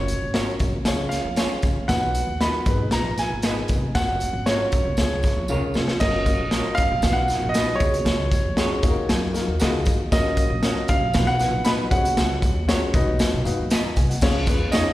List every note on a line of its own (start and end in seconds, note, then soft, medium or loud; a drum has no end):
0.00 0.13 F#1 medium
0.00 0.21 C#4 medium
0.00 0.21 F#4 medium
0.00 0.21 A#4 medium
0.00 0.21 C#5 medium
0.00 0.29 C#5 medium
0.08 closed hi-hat medium
0.08 tambourine medium
0.22 0.42 G#1 medium
0.34 0.72 C#4 medium
0.34 0.46 F#4 medium
0.34 0.72 F#4 medium
0.34 0.73 A#4 medium
0.34 0.47 A#4 medium
0.34 0.73 C#5 medium
0.34 0.47 C#5 medium
0.34 snare loud
0.34 closed hi-hat medium
0.34 tambourine medium
0.59 0.71 A#1 medium
0.59 kick medium
0.59 closed hi-hat medium
0.59 tambourine medium
0.73 0.83 C#2 medium
0.85 1.17 C#2 medium
0.85 1.25 C#4 medium
0.85 1.25 F4 medium
0.85 1.25 G#4 medium
0.85 1.25 C#5 medium
0.85 snare loud
0.85 closed hi-hat medium
0.85 tambourine medium
1.09 1.90 F5 medium
1.09 snare soft
1.09 closed hi-hat medium
1.09 tambourine medium
1.25 1.45 F2 medium
1.36 1.75 C#4 medium
1.36 1.75 F4 medium
1.36 1.49 F4 medium
1.36 1.75 G#4 medium
1.36 1.50 G#4 medium
1.36 1.75 C#5 medium
1.36 1.51 C#5 medium
1.36 snare loud
1.36 closed hi-hat medium
1.36 tambourine medium
1.62 1.74 C#2 medium
1.62 kick medium
1.62 closed hi-hat medium
1.62 tambourine medium
1.75 1.86 D#2 medium
1.88 2.19 B1 medium
1.88 2.27 B3 medium
1.88 2.27 D#4 medium
1.88 2.27 F#4 medium
1.88 2.27 B4 medium
1.88 2.41 F#5 medium
1.88 kick loud
1.88 snare loud
1.88 closed hi-hat medium
1.88 tambourine medium
2.15 closed hi-hat medium
2.15 tambourine medium
2.27 2.48 D#2 medium
2.41 2.65 B3 medium
2.41 2.66 D#4 medium
2.41 2.53 F#4 medium
2.41 2.67 F#4 medium
2.41 2.67 A#4 medium
2.41 2.53 B4 medium
2.41 2.54 D#5 medium
2.41 2.94 B5 loud
2.41 snare medium
2.41 closed hi-hat medium
2.41 tambourine medium
2.66 2.76 G#1 loud
2.66 3.28 B3 medium
2.66 3.29 D#4 medium
2.66 3.28 G#4 medium
2.66 3.29 B4 medium
2.66 kick loud
2.66 closed hi-hat medium
2.66 tambourine medium
2.79 2.89 B1 medium
2.91 3.23 A#1 medium
2.91 3.19 A#5 medium
2.91 snare loud
2.91 closed hi-hat medium
2.91 tambourine medium
3.18 3.66 G#5 medium
3.18 snare soft
3.18 closed hi-hat medium
3.18 tambourine medium
3.30 3.61 G#1 medium
3.42 3.50 A#3 medium
3.42 3.82 D#4 medium
3.42 3.55 G#4 medium
3.42 3.83 G#4 medium
3.42 3.83 A#4 medium
3.42 3.56 B4 medium
3.42 3.57 D#5 medium
3.42 snare loud
3.42 closed hi-hat medium
3.42 tambourine medium
3.51 3.85 B3 medium
3.68 3.90 F1 medium
3.68 kick medium
3.68 closed hi-hat medium
3.68 tambourine medium
3.95 4.26 F#1 loud
3.95 4.34 A#3 medium
3.95 4.34 C#4 medium
3.95 4.34 F#4 medium
3.95 4.34 A#4 medium
3.95 4.48 F#5 loud
3.95 kick loud
3.95 snare loud
3.95 closed hi-hat medium
3.95 tambourine medium
4.20 closed hi-hat medium
4.20 tambourine medium
4.33 4.54 G#1 medium
4.46 4.85 A#3 medium
4.46 4.85 C#4 medium
4.46 4.59 F#4 medium
4.46 4.85 F#4 medium
4.46 4.59 A#4 medium
4.46 5.45 C#5 medium
4.46 4.85 C#5 medium
4.46 4.60 C#5 medium
4.46 snare medium
4.46 closed hi-hat medium
4.46 tambourine medium
4.72 4.83 A#1 medium
4.72 kick medium
4.72 closed hi-hat medium
4.72 tambourine medium
4.85 4.95 C#2 medium
4.97 5.29 C#2 medium
4.97 5.37 G#3 medium
4.97 5.37 C#4 medium
4.97 5.37 F4 medium
4.97 5.37 G#4 medium
4.97 snare loud
4.97 closed hi-hat medium
4.97 tambourine medium
5.23 kick medium
5.23 snare soft
5.23 closed hi-hat medium
5.23 tambourine medium
5.37 5.50 F2 medium
5.48 5.70 C#2 medium
5.48 5.88 G#3 medium
5.48 5.88 C#4 medium
5.48 5.61 F4 medium
5.48 5.88 F4 medium
5.48 5.62 G#4 medium
5.48 5.88 A#4 medium
5.48 5.62 C#5 medium
5.48 5.97 F5 medium
5.48 tambourine loud
5.74 5.85 F1 medium
5.74 snare medium
5.74 tambourine medium
5.88 snare medium
6.00 6.32 F#1 loud
6.00 6.39 A#3 medium
6.00 6.39 C#4 medium
6.00 6.39 F#4 medium
6.00 6.40 A#4 loud
6.00 6.80 D#5 loud
6.00 kick loud
6.00 snare loud
6.00 crash medium
6.00 tambourine medium
6.26 kick medium
6.26 closed hi-hat medium
6.26 tambourine medium
6.40 6.60 A#1 medium
6.51 6.90 A#3 medium
6.51 6.90 C#4 medium
6.51 6.64 F#4 medium
6.51 6.90 F#4 medium
6.51 6.90 A#4 medium
6.51 6.65 A#4 medium
6.51 6.65 C#5 medium
6.51 snare loud
6.51 closed hi-hat medium
6.51 tambourine medium
6.75 6.89 F#1 medium
6.75 7.16 F5 loud
6.75 kick medium
6.75 closed hi-hat medium
6.75 tambourine soft
6.92 7.02 A#1 medium
7.02 7.35 B1 medium
7.02 7.23 B3 medium
7.02 7.23 D#4 medium
7.02 7.23 F#4 medium
7.02 7.23 B4 medium
7.02 kick medium
7.02 snare loud
7.02 closed hi-hat medium
7.02 tambourine medium
7.13 7.54 F#5 medium
7.28 7.49 B3 medium
7.28 7.49 D#4 medium
7.28 7.49 F#4 medium
7.28 7.49 A#4 medium
7.28 snare soft
7.28 closed hi-hat medium
7.28 tambourine medium
7.43 7.73 A#1 medium
7.49 7.79 D#5 medium
7.54 7.81 B3 medium
7.54 7.81 D#4 medium
7.54 7.67 F#4 medium
7.54 7.80 F#4 medium
7.54 7.81 B4 medium
7.54 7.68 B4 medium
7.54 7.68 D#5 medium
7.54 snare loud
7.54 closed hi-hat medium
7.54 tambourine loud
7.75 9.28 C#5 medium
7.80 8.01 C#2 medium
7.80 8.42 G#3 medium
7.80 8.43 C#4 medium
7.80 8.43 F#4 medium
7.80 8.43 G#4 medium
7.80 kick loud
7.80 closed hi-hat medium
7.80 tambourine medium
7.94 closed hi-hat medium
8.05 8.36 C#2 loud
8.05 snare loud
8.05 closed hi-hat medium
8.05 tambourine medium
8.32 kick medium
8.32 closed hi-hat medium
8.32 tambourine medium
8.45 8.65 F2 medium
8.57 8.83 G#3 medium
8.57 8.83 C#4 medium
8.57 8.81 F#4 medium
8.57 8.70 F#4 medium
8.57 8.81 G#4 medium
8.57 8.70 G#4 medium
8.57 8.71 C#5 medium
8.57 snare loud
8.57 closed hi-hat medium
8.57 tambourine medium
8.82 8.94 D#2 medium
8.82 9.24 A#3 medium
8.82 9.24 D#4 medium
8.82 9.24 F#4 medium
8.82 8.89 G#4 medium
8.82 kick loud
8.82 closed hi-hat medium
8.82 tambourine soft
8.89 9.28 A#4 medium
8.96 9.06 D#2 medium
9.09 9.40 F#2 medium
9.09 snare loud
9.09 closed hi-hat medium
9.09 tambourine medium
9.33 9.53 A#3 medium
9.33 9.53 D#4 medium
9.33 9.53 F#4 medium
9.33 9.54 A#4 medium
9.33 snare soft
9.33 closed hi-hat medium
9.33 tambourine soft
9.48 9.58 D#2 medium
9.60 9.82 C#2 medium
9.60 9.99 A#3 medium
9.60 9.99 D#4 medium
9.60 9.72 F#4 medium
9.60 9.99 F#4 medium
9.60 9.99 G#4 loud
9.60 9.73 A#4 medium
9.60 9.73 D#5 medium
9.60 snare loud
9.60 closed hi-hat medium
9.60 tambourine loud
9.85 10.07 D#2 medium
9.85 kick medium
9.85 closed hi-hat medium
9.85 tambourine medium
10.12 10.43 F#1 medium
10.12 10.50 A#3 medium
10.12 10.50 C#4 medium
10.12 10.50 F#4 medium
10.12 10.51 A#4 loud
10.12 10.85 D#5 medium
10.12 kick loud
10.12 snare loud
10.12 closed hi-hat medium
10.12 tambourine medium
10.37 kick medium
10.37 closed hi-hat medium
10.37 tambourine medium
10.50 10.71 A#1 medium
10.63 11.01 A#3 medium
10.63 10.75 C#4 medium
10.63 11.02 C#4 medium
10.63 10.76 F#4 medium
10.63 11.02 F#4 medium
10.63 10.76 A#4 medium
10.63 11.02 C#5 medium
10.63 snare loud
10.63 closed hi-hat medium
10.63 tambourine medium
10.88 10.99 F#1 loud
10.88 11.28 F5 medium
10.88 kick medium
10.88 closed hi-hat medium
10.88 tambourine medium
11.01 11.11 A#1 medium
11.14 11.46 B1 loud
11.14 11.34 B3 medium
11.14 11.34 D#4 medium
11.14 11.34 F#4 medium
11.14 11.34 B4 medium
11.14 kick medium
11.14 snare loud
11.14 closed hi-hat medium
11.14 tambourine medium
11.27 11.67 F#5 loud
11.39 11.59 B3 medium
11.39 11.59 D#4 medium
11.39 11.59 F#4 medium
11.39 11.59 B4 medium
11.39 snare soft
11.39 closed hi-hat medium
11.39 tambourine medium
11.52 11.83 A#1 medium
11.65 11.92 B3 medium
11.65 11.92 D#4 medium
11.65 11.78 F#4 medium
11.65 11.90 F#4 medium
11.65 11.92 B4 medium
11.65 11.79 B4 medium
11.65 11.79 D#5 medium
11.65 11.70 B5 loud
11.65 snare loud
11.65 closed hi-hat medium
11.65 tambourine medium
11.91 12.11 C#2 medium
11.91 12.53 C#4 medium
11.91 12.53 F#4 medium
11.91 12.53 G#4 medium
11.91 11.98 C5 medium
11.91 13.41 F#5 medium
11.91 kick loud
11.91 closed hi-hat medium
11.91 tambourine medium
11.98 12.56 C#5 medium
12.05 closed hi-hat medium
12.17 12.56 C#2 loud
12.17 snare loud
12.17 closed hi-hat medium
12.17 tambourine medium
12.42 kick medium
12.42 closed hi-hat medium
12.42 tambourine medium
12.56 12.76 D#2 medium
12.68 12.94 C#4 medium
12.68 12.92 F#4 medium
12.68 12.80 F#4 medium
12.68 12.94 G#4 medium
12.68 12.81 G#4 medium
12.68 12.94 C#5 medium
12.68 12.81 C#5 medium
12.68 snare loud
12.68 closed hi-hat medium
12.68 tambourine medium
12.94 13.04 B1 loud
12.94 13.35 D#4 loud
12.94 13.35 F#4 medium
12.94 13.35 B4 medium
12.94 13.35 D#5 loud
12.94 kick loud
12.94 closed hi-hat medium
12.94 tambourine soft
13.08 13.17 B1 medium
13.19 snare loud
13.19 closed hi-hat medium
13.19 tambourine medium
13.34 13.43 B2 medium
13.45 13.56 G#2 loud
13.45 13.64 D#4 medium
13.45 13.64 F#4 medium
13.45 13.64 B4 medium
13.45 13.64 F5 medium
13.45 closed hi-hat medium
13.45 tambourine medium
13.59 13.72 F#2 medium
13.70 13.92 D#2 medium
13.70 13.83 F#4 medium
13.70 13.83 B4 medium
13.70 13.84 D#5 medium
13.70 snare loud
13.70 closed hi-hat medium
13.70 tambourine loud
13.84 13.96 A#5 medium
13.96 14.07 C2 medium
13.96 14.09 G#5 medium
13.96 kick medium
13.96 closed hi-hat medium
13.96 tambourine medium
14.09 14.33 F#5 medium
14.09 closed hi-hat medium
14.21 14.60 C#2 loud
14.21 14.41 C#4 loud
14.21 14.41 F4 loud
14.21 14.41 G#4 loud
14.21 14.41 C#5 loud
14.21 kick loud
14.21 snare loud
14.21 crash medium
14.21 tambourine medium
14.47 14.67 C#4 medium
14.47 14.67 F4 medium
14.47 14.67 G#4 medium
14.47 14.67 B4 medium
14.47 kick medium
14.47 closed hi-hat medium
14.47 tambourine medium
14.60 14.80 F2 medium
14.72 14.93 C#4 medium
14.72 14.93 D#4 medium
14.72 14.85 F4 medium
14.72 14.93 F4 medium
14.72 14.85 G#4 medium
14.72 14.93 G#4 medium
14.72 14.86 C#5 medium
14.72 14.93 C#5 medium
14.72 14.93 D#5 medium
14.72 snare loud
14.72 closed hi-hat medium
14.72 tambourine medium